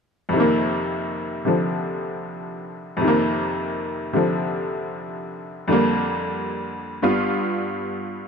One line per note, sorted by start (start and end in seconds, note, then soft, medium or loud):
0.29 2.95 F2 soft
0.29 1.43 C3 soft
0.36 3.03 D#3 soft
0.36 3.05 A#3 medium
1.45 2.99 C3 soft
1.45 3.02 D3 soft
1.45 3.03 F3 soft
2.97 5.66 F2 soft
3.01 4.12 C3 soft
3.01 5.70 D#3 soft
3.08 5.71 A#3 medium
4.13 5.68 C3 soft
4.13 5.67 D3 soft
4.13 5.70 F3 soft
5.68 7.02 F2 soft
5.68 7.03 D3 soft
5.68 7.01 G3 soft
5.72 7.04 A#3 medium
7.02 8.28 G2 soft
7.02 8.28 G3 soft
7.02 8.28 B3 soft
7.02 8.28 F4 medium